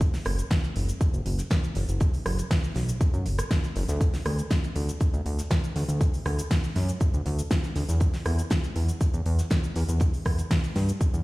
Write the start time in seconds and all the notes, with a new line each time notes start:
0.01 kick, closed hi-hat, shaker
0.14 snare, open hi-hat, shaker
0.25 F#1, cross-stick, closed hi-hat, open hi-hat
0.39 closed hi-hat, shaker
0.51 kick, snare, closed hi-hat, shaker
0.63 snare, closed hi-hat, shaker
0.76 F#1, closed hi-hat, open hi-hat
0.89 closed hi-hat, shaker
1.01 kick, closed hi-hat, shaker
1.14 F#1, closed hi-hat, shaker
1.26 F#1, closed hi-hat, open hi-hat
1.38 snare, closed hi-hat, shaker
1.50 kick, snare, closed hi-hat, shaker
1.64 closed hi-hat, shaker
1.75 F#1, snare, closed hi-hat, open hi-hat
1.89 F#1, closed hi-hat, shaker
2.00 kick, closed hi-hat, shaker
2.14 open hi-hat, shaker
2.26 F#1, cross-stick, closed hi-hat, open hi-hat
2.38 closed hi-hat, shaker
2.51 kick, snare, closed hi-hat, open hi-hat, shaker
2.64 closed hi-hat, shaker
2.75 B1, snare, closed hi-hat, open hi-hat
2.89 closed hi-hat, shaker
3.01 kick, closed hi-hat, shaker
3.14 F#2, closed hi-hat, shaker
3.26 F#1, closed hi-hat, open hi-hat
3.38 cross-stick, closed hi-hat, shaker
3.51 kick, snare, closed hi-hat, shaker
3.64 snare, closed hi-hat, shaker
3.75 F#1, snare, closed hi-hat, open hi-hat
3.89 D2, snare, closed hi-hat, shaker
4.01 kick, closed hi-hat, shaker
4.14 snare, open hi-hat, shaker
4.25 D2, cross-stick, closed hi-hat, open hi-hat
4.39 closed hi-hat, shaker
4.50 kick, snare, closed hi-hat, shaker
4.63 snare, closed hi-hat, shaker
4.75 D2, closed hi-hat, open hi-hat
4.89 closed hi-hat, shaker
5.00 kick, closed hi-hat, shaker
5.13 D2, closed hi-hat, shaker
5.26 D2, closed hi-hat, open hi-hat
5.38 snare, closed hi-hat, shaker
5.51 kick, snare, closed hi-hat, shaker
5.64 closed hi-hat, shaker
5.76 D2, snare, closed hi-hat, open hi-hat
5.89 D2, closed hi-hat, shaker
6.01 kick, closed hi-hat, shaker
6.14 open hi-hat, shaker
6.25 D2, cross-stick, closed hi-hat, open hi-hat
6.39 closed hi-hat, shaker
6.51 kick, snare, closed hi-hat, open hi-hat, shaker
6.64 closed hi-hat, shaker
6.76 F#2, snare, closed hi-hat, open hi-hat
6.89 closed hi-hat, shaker
7.00 kick, closed hi-hat, shaker
7.14 D2, closed hi-hat, shaker
7.26 D2, closed hi-hat, open hi-hat
7.39 closed hi-hat, shaker
7.51 kick, snare, closed hi-hat, shaker
7.64 snare, closed hi-hat, shaker
7.75 D2, snare, closed hi-hat, open hi-hat
7.89 E2, snare, closed hi-hat, shaker
8.00 kick, closed hi-hat, shaker
8.13 snare, open hi-hat, shaker
8.25 E2, cross-stick, closed hi-hat, open hi-hat
8.39 closed hi-hat, shaker
8.50 kick, snare, closed hi-hat, shaker
8.63 snare, closed hi-hat, shaker
8.76 E2, closed hi-hat, open hi-hat
8.89 closed hi-hat, shaker
9.01 kick, closed hi-hat, shaker
9.14 E2, closed hi-hat, shaker
9.26 E2, closed hi-hat, open hi-hat
9.39 snare, closed hi-hat, shaker
9.50 kick, snare, closed hi-hat, shaker
9.64 closed hi-hat, shaker
9.76 E2, snare, closed hi-hat, open hi-hat
9.89 E2, closed hi-hat, shaker
10.00 kick, closed hi-hat, shaker
10.14 open hi-hat, shaker
10.25 E2, kick, cross-stick, closed hi-hat, open hi-hat
10.38 closed hi-hat, shaker
10.51 kick, snare, closed hi-hat, open hi-hat, shaker
10.64 closed hi-hat, shaker
10.75 G2, snare, closed hi-hat, open hi-hat
10.89 closed hi-hat, shaker
11.01 kick, closed hi-hat, shaker
11.14 E2, closed hi-hat, shaker